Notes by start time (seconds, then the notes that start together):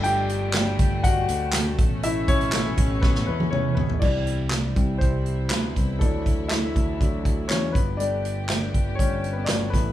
Already playing: G1 D3 G3 A3 D4
0.03 G4 G5, closed hi-hat
0.29 closed hi-hat
0.53 snare, clap, closed hi-hat
0.79 G1, kick, closed hi-hat
1.04 F#4 F#5, kick, closed hi-hat
1.28 D2, closed hi-hat
1.53 snare, clap, closed hi-hat
1.79 A1 B2 C#4, kick, closed hi-hat
2.03 E4 E5, closed hi-hat
2.28 C#4 C#5, kick, closed hi-hat
2.41 closed hi-hat
2.52 A3 B3 C#4, snare, clap, closed hi-hat
2.77 A1, kick, closed hi-hat
3.01 B3 B4, kick, snare
3.15 snare
3.27 E2 B3 B4
3.40 high tom
3.50 C#4 C#5, mid tom
3.75 A1 B3 B4, floor tom
3.89 floor tom
4.00 C2 C3 E3 G3 C4 D4 E4 D5, kick, crash
4.27 closed hi-hat
4.50 snare, clap, closed hi-hat
4.76 C2 E3 G3 C4, kick, closed hi-hat
4.98 C2 C4 C5, kick, closed hi-hat
5.26 closed hi-hat
5.50 D2 B3 B4, snare, clap, closed hi-hat
5.76 C2, kick, closed hi-hat
5.99 D2 D3 E3 F#3 A3 D4 A4, kick, closed hi-hat
6.26 kick, closed hi-hat
6.48 E4 E5, snare, clap, closed hi-hat
6.76 D2, kick, closed hi-hat
7.00 D2 E3 F#3 D4, kick, closed hi-hat
7.25 kick, closed hi-hat
7.48 E2 C#4 C#5, snare, clap, closed hi-hat
7.72 G1 A3 G4 B4, kick, closed hi-hat
7.77 B3
7.97 G3 A3 D4 D5, closed hi-hat
8.25 closed hi-hat
8.49 snare, clap, closed hi-hat
8.74 G1, kick, closed hi-hat
8.95 G1 C#5, kick
9.00 C#4, closed hi-hat
9.24 closed hi-hat
9.33 B4
9.37 B3
9.44 D5, snare, clap
9.48 G1 D4, closed hi-hat
9.70 A1 B2 E3 A3 B3 E4 B4, kick, snare
9.74 closed hi-hat